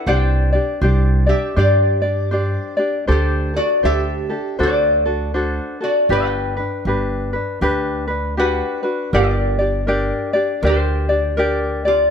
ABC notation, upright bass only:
X:1
M:4/4
L:1/8
Q:"Swing" 1/4=79
K:G
V:1 name="Upright bass" clef=bass
C,,2 C,,2 G,,4 | D,,2 D,,2 D,,4 | G,,,2 G,,,2 D,,4 | [K:Gm] G,,,4 D,,4 |]